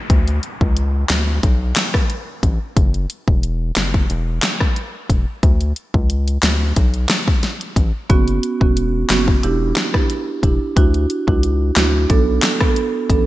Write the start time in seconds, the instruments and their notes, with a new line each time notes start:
Already playing: downlifter
0.10 analog synth bass D2, kick, closed hi-hat
0.28 closed hi-hat
0.43 closed hi-hat
0.61 analog synth bass C#2, kick
0.77 closed hi-hat
1.09 analog synth bass D2, snare, clap, closed hi-hat
1.43 analog synth bass B1, kick, closed hi-hat
1.76 snare, clap, closed hi-hat
1.94 kick, cross-stick
2.10 closed hi-hat
2.43 analog synth bass A1, kick, closed hi-hat
2.77 analog synth bass F#1, kick, closed hi-hat
2.94 closed hi-hat
3.10 closed hi-hat
3.28 analog synth bass E1, kick
3.43 closed hi-hat
3.76 analog synth bass F#1, snare, clap, closed hi-hat
3.94 kick
4.10 analog synth bass E1, closed hi-hat
4.42 snare, clap, closed hi-hat
4.60 kick, cross-stick
4.76 closed hi-hat
5.10 analog synth bass E1, kick, closed hi-hat
5.43 analog synth bass D2, kick, closed hi-hat
5.61 closed hi-hat
5.76 closed hi-hat
5.94 analog synth bass C#2, kick
6.10 closed hi-hat
6.28 closed hi-hat
6.42 analog synth bass D2, snare, clap, closed hi-hat
6.76 analog synth bass B1, kick, closed hi-hat
6.94 closed hi-hat
7.09 snare, clap, closed hi-hat
7.28 kick
7.43 snare, closed hi-hat
7.61 closed hi-hat
7.76 analog synth bass A1, kick, closed hi-hat
8.10 analog synth bass F#1, marimba B3 C#4 F#4, kick, closed hi-hat
8.28 closed hi-hat
8.43 closed hi-hat
8.61 analog synth bass E1, marimba B3 C#4 F#4, kick
8.77 closed hi-hat
9.09 analog synth bass F#1, marimba B3 C#4 F#4, snare, clap, closed hi-hat
9.28 kick
9.43 analog synth bass E1, marimba D4 E4 G4, closed hi-hat
9.76 snare, clap, closed hi-hat
9.94 marimba D4 E4 G4, kick, cross-stick
10.10 closed hi-hat
10.43 analog synth bass E1, marimba D4 E4 G4, kick, closed hi-hat
10.76 analog synth bass D2, marimba D4 E4 F#4, kick, closed hi-hat
10.94 closed hi-hat
11.10 closed hi-hat
11.27 analog synth bass C#2, marimba D4 E4 F#4, kick
11.43 closed hi-hat
11.76 analog synth bass D2, marimba D4 E4 F#4, snare, clap, closed hi-hat
12.09 analog synth bass B1, marimba B3 D4 A4, kick, closed hi-hat
12.42 snare, clap, closed hi-hat
12.61 marimba B3 D4 A4, kick, cross-stick
12.76 closed hi-hat
13.10 analog synth bass A1, marimba B3 D4 A4, kick, closed hi-hat